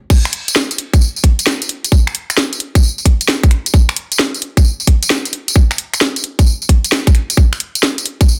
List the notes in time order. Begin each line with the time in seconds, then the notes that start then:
0.10 kick, crash, tambourine
0.25 finger snap, tambourine
0.33 open hi-hat
0.48 closed hi-hat, tambourine
0.56 snare
0.71 closed hi-hat, tambourine
0.78 open hi-hat
0.93 kick, closed hi-hat, tambourine
1.01 tambourine
1.16 tambourine
1.24 kick, open hi-hat
1.39 closed hi-hat, tambourine
1.47 snare, tambourine
1.62 closed hi-hat, tambourine
1.69 open hi-hat
1.84 closed hi-hat, tambourine
1.92 kick, tambourine
2.07 finger snap, tambourine
2.15 open hi-hat
2.30 finger snap, closed hi-hat, tambourine
2.37 snare, tambourine
2.53 closed hi-hat, tambourine
2.60 open hi-hat
2.75 kick, closed hi-hat, tambourine
2.83 tambourine
2.98 tambourine
3.06 kick, open hi-hat
3.21 closed hi-hat, tambourine
3.28 snare, tambourine
3.43 kick, closed hi-hat, tambourine
3.51 finger snap, open hi-hat
3.66 closed hi-hat, tambourine
3.74 kick, tambourine
3.89 finger snap, tambourine
3.96 open hi-hat
4.12 closed hi-hat, tambourine
4.19 snare
4.34 closed hi-hat, tambourine
4.42 open hi-hat
4.57 kick, closed hi-hat, tambourine
4.65 tambourine
4.80 tambourine
4.87 kick, open hi-hat
5.03 closed hi-hat, tambourine
5.10 snare
5.25 closed hi-hat, tambourine
5.33 open hi-hat
5.48 closed hi-hat, tambourine
5.56 kick
5.71 finger snap, tambourine
5.78 open hi-hat
5.94 finger snap, closed hi-hat, tambourine
6.01 snare
6.16 closed hi-hat, tambourine
6.24 open hi-hat
6.39 kick, closed hi-hat, tambourine
6.47 tambourine
6.62 tambourine
6.69 kick, open hi-hat
6.84 closed hi-hat, tambourine
6.92 snare
7.07 kick, closed hi-hat, tambourine
7.15 finger snap, open hi-hat
7.30 closed hi-hat, tambourine
7.37 kick
7.53 finger snap, tambourine
7.60 open hi-hat
7.75 closed hi-hat, tambourine
7.83 snare, tambourine
7.98 closed hi-hat, tambourine
8.06 open hi-hat
8.21 kick, closed hi-hat, tambourine
8.28 tambourine